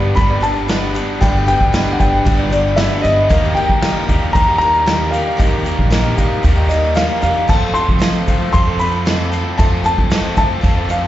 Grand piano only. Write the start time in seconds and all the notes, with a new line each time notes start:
0.16 B5
0.43 A5
1.21 G5
1.48 G5
1.93 F#5
2.00 G5
2.51 D5
2.76 E5
3.02 D#5
3.55 G5
4.33 A#5
4.58 A#5
5.11 F5
6.69 D#5
6.95 F5
7.23 F5
7.49 A5
7.74 C6
8.53 C6
8.80 B5
9.58 A5
9.86 A5
10.38 A5
10.91 F5